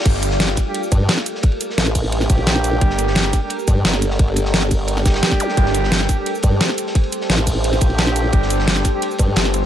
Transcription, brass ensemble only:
X:1
M:4/4
L:1/16
Q:1/4=174
K:Gm
V:1 name="Brass ensemble"
z6 z [G,DG]2 z6 z | z6 z [G,DG]8- [G,DG]- | [G,DG]6- [G,DG] [G,DG]2 z6 z | z6 z [G,DG]8- [G,DG]- |
[G,DG]6- [G,DG] [G,DG]2 z6 z | z6 z [G,DG]8- [G,DG]- | [G,DG]6- [G,DG] [G,DG]2 z6 z |]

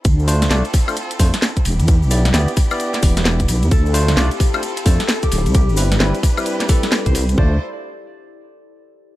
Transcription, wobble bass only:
X:1
M:4/4
L:1/16
Q:"Swing 16ths" 1/4=131
K:Ddor
V:1 name="Wobble bass" clef=bass
D,,4 C,, z4 z F,, z3 E,,, E,,- | E,, B,,,3 D,, z4 z E,,,4 B,,, E,, | D,,4 C,, z4 z F,, z3 D,,, C,,- | C,, G,,,3 G,,, z8 C,,3 |
D,,2 z12 z2 |]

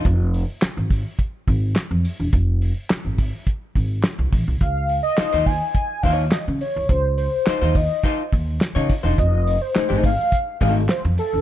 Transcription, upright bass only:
X:1
M:4/4
L:1/16
Q:1/4=105
K:Dblyd
V:1 name="Upright bass" clef=bass
F,,,3 z2 A,,,2 z3 A,,,2 z F,, z =E,,, | F,,,3 z2 A,,,2 z3 A,,,2 z C,, =A,,, C,, | D,,3 z2 E,,2 z3 E,,2 z D, z C,, | D,,3 z2 E,,2 z3 E,,2 z D, z =E,,, |
F,,,3 z2 ^G,,,2 z3 G,,,2 z F,, z =E,,, |]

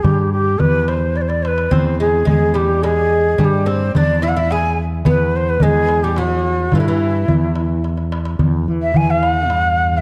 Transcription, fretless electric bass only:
X:1
M:3/4
L:1/8
Q:1/4=108
K:none
V:1 name="Fretless electric bass" clef=bass
G,,2 E,,4 | E,,2 E,,4 | G,,2 E,,4 | E,,2 E,,4 |
G,,2 E,,4 | E,, E, E,2 G,,2 |]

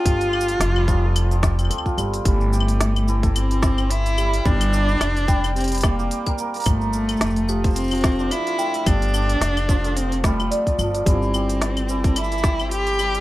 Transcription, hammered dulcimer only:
X:1
M:4/4
L:1/16
Q:"Swing 16ths" 1/4=109
K:F
V:1 name="Hammered dulcimer"
F,2 G3 G, F, A2 F, G C2 F G, z | E,2 G4 E, A2 E, G C2 E G, G, | G,2 d4 G, g2 G, d G2 B B, B, | F,2 A4 F, c2 F, A D2 F A, A, |
F,2 G4 F, A2 F, G, F, z F, F, z | E, E G4 E, A2 E, G C3 G, G, |]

